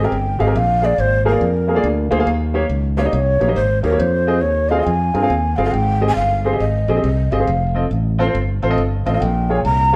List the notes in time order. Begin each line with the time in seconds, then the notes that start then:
0.04 C4 G4 G#4 A#4 G5
0.12 G1
0.39 G#1 C4 G4 G#4 D#5 F5
0.46 C4 G4 G#4 A#4
0.55 A#1 A#2 F5
0.82 A#3 F4 G#4 D5
0.98 G#1 C5
1.25 A#3 F4 G#4 A#4
1.32 A#3 F4 G#4 D5
1.41 F2
1.68 A#3 F4 G#4 A#4
1.75 A#3 F4 G#4 D5
1.84 D2
2.11 D2 A#3 F4 G#4 C5
2.19 A#3 F4 G#4 F5
2.27 D#2 D#3
2.54 A#3 D#4 G4 C#5
2.69 C#2
2.97 A#3 D#4 G4 C#5 F5
3.03 A#3 D#4 G4 D5 D#5
3.13 C2 C#5
3.40 A#1 A#3 D#4 G4 C#5
3.48 A#3 D#4 G4 D#5
3.55 G#1 C5
3.83 D#2 A#3 D#4 G4 A#4 C#5
3.91 A#3 D#4 G4 C#5
3.99 F2 C5
4.27 C4 F4 G#4 D#5
4.41 D#2 C#5
4.69 C4 F4 G#4 D#5 F5
4.78 C4 F4 G#4 D#5
4.85 F2 G#5
5.14 G2 C4 F4 G#4 A#4
5.22 C4 F4 G#4 F5
5.30 D#2
5.56 G1 C4 F4 G#4 F5
5.65 C4 F4 G#4 F5
5.72 G#1 G#2 G5
6.01 C4 G4 G#4 D#5
6.08 G#5
6.16 G1 F5
6.45 C4 G4 G#4 C5
6.52 C4 G4 G#4 D#5
6.59 G#1 D#5
6.88 A#1 C4 G4 G#4 D#5
6.96 C4 G4 G#4 D#5
7.03 C2 D#5
7.32 G1 C4 G4 G#4 D#5 F5
7.39 C4 G4 G#4 C5
7.47 F1
7.75 C4 F4 A4 D#5
7.91 A1
8.19 C4 F4 A4 C5
8.26 C4 F4 A4 C5
8.35 G1
8.62 A1 C4 F4 A4 C5
8.70 C4 F4 A4 D#5
8.78 G1
9.06 A1 C4 F4 A4 D#5 F5
9.13 C4 F4 A4 D#5 F5
9.21 A#1 A#2 G5
9.49 A#3 F4 G#4 C#5
9.56 G#5
9.64 C2 A#5
9.93 A#3